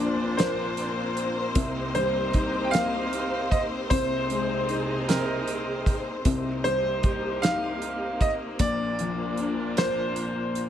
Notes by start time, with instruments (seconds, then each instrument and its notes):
Already playing: felt piano A#1 A#2 F3, string section A#3 C4 D4 F4 C5, grand piano D5
0.00 felt piano D4
0.37 felt piano A#3, grand piano C5, snare, closed hi-hat
0.77 closed hi-hat
1.17 closed hi-hat
1.55 felt piano C2 C3, string section D#4 G4, kick, closed hi-hat
1.95 felt piano G3, grand piano C5, closed hi-hat
2.33 felt piano D#4, kick, closed hi-hat
2.64 grand piano G5
2.71 felt piano A#3, grand piano F5, snare, closed hi-hat
3.13 closed hi-hat
3.51 grand piano D#5, kick, closed hi-hat
3.90 felt piano C2 C3, string section C3 D#4 G#4, grand piano C5, kick, closed hi-hat
4.30 felt piano G#3, closed hi-hat
4.69 felt piano D#4, closed hi-hat
5.08 felt piano C4, grand piano A#4, snare, closed hi-hat
5.48 closed hi-hat
5.86 kick, closed hi-hat
6.25 felt piano C2 C3, string section A#3 D#4 G4, kick, closed hi-hat
6.64 felt piano G3, grand piano C5, closed hi-hat
7.03 felt piano G4, kick, closed hi-hat
7.42 felt piano D#4, grand piano F5, snare, closed hi-hat
7.82 closed hi-hat
8.21 grand piano D#5, kick, closed hi-hat
8.59 felt piano A#1 A#2, string section D4 F4, grand piano D5, kick, closed hi-hat
8.99 felt piano F3, closed hi-hat
9.37 felt piano D4, closed hi-hat
9.77 felt piano A#3, grand piano C5, snare, closed hi-hat
10.16 closed hi-hat
10.55 closed hi-hat